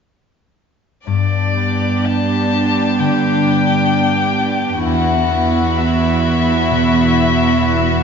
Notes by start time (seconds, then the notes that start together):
1.06 G2 B3 D4 G4 D5
1.57 B3
2.05 G4 A5
2.53 D4
2.99 D3 G5
3.46 B3
3.92 G4
4.38 D4
4.84 E2 B3 E4 F#4 F#5
5.31 B3
5.77 F#4 E5
6.25 E4
6.71 B2
7.17 B3
7.63 F#4